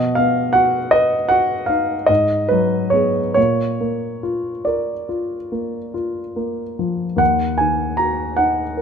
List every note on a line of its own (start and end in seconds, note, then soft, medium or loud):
0.00 2.04 B2 medium
0.00 0.17 D#5 medium
0.15 0.78 B3 soft
0.15 0.54 F5 medium
0.53 1.15 F#4 soft
0.53 0.92 F#5 medium
0.91 1.54 B4 soft
0.91 1.30 D#5 medium
1.29 1.93 F#4 soft
1.29 1.68 F#5 medium
1.66 2.09 D#4 soft
1.66 2.08 F5 medium
2.06 3.33 G#2 soft
2.06 2.50 D#5 medium
2.48 3.20 F#3 soft
2.48 2.92 B4 medium
2.90 3.32 B3 soft
2.90 3.32 G#4 soft
2.90 3.33 C#5 medium
3.34 7.16 A#2 soft
3.34 4.64 C#5 medium
3.81 4.49 A#3 soft
4.23 4.91 F4 soft
4.65 5.35 A#4 soft
4.65 5.93 D5 soft
5.09 5.77 F4 soft
5.52 6.20 A#3 soft
5.94 6.62 F4 soft
6.36 7.04 A#3 soft
6.79 7.20 F3 soft
7.16 8.82 D#2 soft
7.16 7.59 F#5 medium
7.58 8.25 D#3 soft
7.58 7.99 G#5 medium
7.97 8.63 F#4 soft
7.97 8.38 A#5 medium
8.37 8.82 D#4 soft
8.37 8.82 F#5 medium
8.77 8.82 A#4 soft